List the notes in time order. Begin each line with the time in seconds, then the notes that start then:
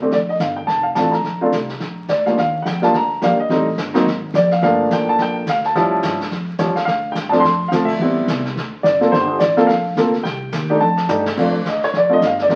Already playing: D2
0.02 A3 C4 D4 G4
0.11 A#1 D5, brush sweep, kick, snare
0.29 D#5
0.40 G1 F5, kick, snare, hi-hat pedal
0.56 G5
0.67 F1 A5, brush sweep, kick, snare
0.83 F5
0.95 A1 A3 C4 D4 F4 A5, kick, snare, hi-hat pedal
1.11 A#5, snare
1.24 A#1, brush sweep, kick, snare
1.41 A3 C4 D4 F4
1.52 C2, kick, snare, hi-hat pedal
1.69 snare
1.80 A#1, brush sweep, kick, snare
2.08 D2 D5, kick, snare, hi-hat pedal
2.26 D#2 G3 A#3 D4 F4 F5, snare
2.37 D#2 F5, brush sweep, kick, snare
2.62 F2 F#5, kick, snare, hi-hat pedal
2.67 G5
2.82 G3 A#3 D4 F4 A5, snare
2.94 D2 A#5, brush sweep, kick, snare
3.22 A#1 G3 A#3 D4 G4 F5, kick, snare, hi-hat pedal
3.39 D#5, muted upright bass stroke
3.49 A1 G3 A3 C4 D#4, brush sweep, kick, snare
3.78 G1, kick, snare, hi-hat pedal
3.94 F#3 A#3 C4 D#4, snare
4.06 G#1, brush sweep, kick, snare
4.34 A#1 D5, kick, snare, hi-hat pedal
4.51 F5, snare
4.62 G1 F3 A3 A#3 D4 F5, brush sweep, kick, snare
4.91 A1 G5, kick, snare, hi-hat pedal
5.09 A5
5.18 A#1 G5, brush sweep, kick, snare
5.47 D2 F5, kick, snare, hi-hat pedal
5.64 A5, snare
5.75 A2 F3 G3 C#4 E4, brush sweep, kick, snare
6.02 G2, snare, hi-hat pedal
6.21 snare
6.31 F2, brush sweep, kick, snare
6.58 E2 F3 G3 C#4 G4 C#5, kick, snare, hi-hat pedal
6.75 F5, muted upright bass stroke, snare
6.85 D2 F5, brush sweep, kick, snare
7.12 G2 G5, kick, snare, hi-hat pedal
7.29 F3 A3 C4 D4 A5, snare
7.40 F2 C6, kick
7.44 brush sweep, snare
7.68 D2 F3 A3 C4 F4 F5, kick, hi-hat pedal
7.72 snare
7.85 E5, kick, crash
7.99 A1 G3 B3 C4 E4, brush sweep
8.28 C2, kick, snare, hi-hat pedal
8.45 snare
8.56 D2, brush sweep, kick, snare
8.83 F#1 D5, kick, snare, hi-hat pedal
9.01 A#3 C4 F4 A4, snare
9.12 G1 C5, brush sweep, kick, snare
9.39 A1 D5, kick, snare, hi-hat pedal
9.57 A#3 C4 F4 A4, snare
9.67 A#1 F5, brush sweep, kick, snare
9.96 D2 A#3 C4 F4 A4, kick, snare, hi-hat pedal
10.13 snare
10.23 C2 G5, brush sweep, kick, snare
10.52 D#2, kick, snare, hi-hat pedal
10.70 A3 D4 D#4 G4
10.80 F2 A5
10.97 snare
11.08 G2 A3 D4 D#4 G4, floor tom, hi-hat pedal
11.26 snare
11.37 F2 A3 C4 D4 F4, brush sweep, kick, snare, crash
11.65 D2 D#5, kick, snare, hi-hat pedal
11.83 C#5, snare
11.93 A#1 D5, brush sweep, kick, snare
12.09 A3 C4 D4 F4 D#5
12.21 G1, kick, snare, hi-hat pedal
12.26 F5
12.38 D5, snare
12.49 A1 A3 C4 D#4 G4, brush sweep, kick, snare